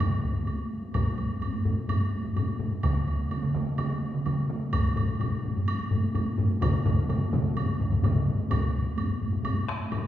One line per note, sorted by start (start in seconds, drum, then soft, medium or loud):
0.00 taiko low-mid medium
0.00 taiko mid loud
0.00 taiko high medium
0.00 high woodblock medium
0.23 taiko medium
0.23 taiko high soft
0.35 taiko high medium
0.46 taiko high medium
0.46 high woodblock soft
0.70 taiko high soft
0.82 taiko high medium
0.93 taiko loud
0.93 taiko low-mid loud
0.93 taiko high medium
0.93 high woodblock soft
1.18 taiko high medium
1.18 high woodblock soft
1.30 taiko high medium
1.42 taiko low-mid medium
1.42 taiko high medium
1.42 high woodblock soft
1.53 taiko low-mid medium
1.65 taiko low-mid loud
1.65 taiko high medium
1.78 taiko high soft
1.89 taiko low-mid medium
1.89 taiko high medium
1.89 high woodblock soft
2.13 taiko high medium
2.24 taiko low-mid medium
2.24 taiko high medium
2.36 taiko low-mid medium
2.36 taiko high medium
2.36 high woodblock soft
2.59 taiko low-mid medium
2.59 taiko high medium
2.72 taiko high medium
2.83 taiko medium
2.83 taiko mid medium
2.83 taiko high medium
2.83 high woodblock soft
3.07 taiko high soft
3.07 high woodblock soft
3.19 taiko high medium
3.31 taiko mid medium
3.31 taiko high medium
3.31 high woodblock soft
3.43 taiko mid medium
3.55 taiko mid loud
3.55 taiko high medium
3.78 taiko mid medium
3.78 taiko high medium
3.78 high woodblock medium
4.02 taiko high medium
4.14 taiko mid medium
4.14 taiko high medium
4.26 taiko mid loud
4.26 taiko high medium
4.26 high woodblock soft
4.50 taiko mid loud
4.50 taiko high soft
4.61 taiko high medium
4.72 taiko medium
4.72 taiko low-mid medium
4.72 taiko high medium
4.72 high woodblock medium
4.84 taiko low-mid medium
4.96 taiko low-mid loud
4.96 taiko high soft
4.96 high woodblock soft
5.08 taiko high medium
5.20 taiko low-mid loud
5.20 taiko high medium
5.20 high woodblock soft
5.43 taiko low-mid medium
5.43 taiko high medium
5.56 taiko low-mid medium
5.56 taiko high medium
5.68 taiko high medium
5.68 high woodblock medium
5.91 taiko low-mid medium
5.91 taiko high medium
6.03 taiko high medium
6.14 taiko low-mid loud
6.14 taiko high medium
6.14 high woodblock soft
6.38 taiko low-mid loud
6.38 taiko high medium
6.51 taiko high medium
6.62 taiko loud
6.62 taiko low-mid loud
6.62 taiko mid loud
6.62 taiko high medium
6.62 high woodblock medium
6.86 taiko low-mid loud
6.86 taiko mid loud
6.86 taiko high medium
6.86 high woodblock soft
6.99 taiko high medium
7.09 taiko low-mid medium
7.09 taiko mid loud
7.09 taiko high medium
7.09 high woodblock soft
7.33 taiko medium
7.33 taiko low-mid loud
7.33 taiko mid loud
7.33 taiko high medium
7.45 taiko high medium
7.57 taiko low-mid medium
7.57 taiko mid medium
7.57 taiko high medium
7.57 high woodblock soft
7.80 taiko medium
7.80 taiko low-mid medium
7.80 taiko mid medium
7.80 taiko high medium
7.92 taiko low-mid medium
7.92 taiko mid medium
7.92 taiko high medium
8.03 taiko low-mid loud
8.03 taiko mid loud
8.03 taiko high medium
8.03 high woodblock soft
8.15 taiko low-mid medium
8.15 taiko mid medium
8.28 taiko high medium
8.39 taiko high medium
8.51 taiko loud
8.51 taiko low-mid loud
8.51 taiko high medium
8.51 high woodblock medium
8.86 taiko high medium
8.98 taiko low-mid medium
8.98 taiko high medium
8.98 high woodblock soft
9.10 taiko low-mid medium
9.21 taiko low-mid medium
9.21 taiko high medium
9.32 taiko low-mid medium
9.32 taiko high medium
9.44 taiko low-mid loud
9.44 taiko high medium
9.44 high woodblock medium
9.68 taiko rim medium
9.68 high woodblock soft
9.80 taiko high medium
9.92 taiko low-mid loud
9.92 taiko high medium
9.92 high woodblock soft